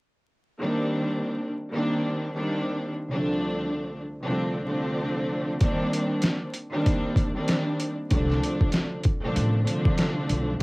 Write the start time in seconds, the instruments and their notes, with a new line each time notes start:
0.60 string section D#3 G3 A#3 C4 D4
1.72 string section D#3 G3 A#3 C4 D4
2.34 string section D#3 G3 A#3 C4 D4
3.10 string section C2 D3 F3 A3 C4 D4
4.23 string section C2 D3 F3 A3 C4 D4
4.65 string section C2 D3 F3 A3 C4 D4
5.60 string section D#3 G3 A#3 C4 D4, kick, closed hi-hat
5.93 closed hi-hat
6.22 snare, closed hi-hat
6.54 closed hi-hat
6.72 string section D#3 G3 A#3 C4 D4
6.86 kick, closed hi-hat
7.16 kick, closed hi-hat
7.34 string section D#3 G3 A#3 C4 D4
7.48 snare, closed hi-hat
7.80 closed hi-hat
8.10 string section C2 D3 F3 A3 C4 D4, upright bass C2, kick, closed hi-hat
8.30 snare
8.43 closed hi-hat
8.61 kick
8.72 snare, closed hi-hat
9.04 kick, closed hi-hat
9.23 string section C2 D3 F3 A3 C4 D4
9.36 upright bass A1, closed hi-hat
9.65 string section C2 D3 F3 A3 C4 D4, closed hi-hat
9.85 kick
9.98 snare, closed hi-hat
10.30 upright bass B1, closed hi-hat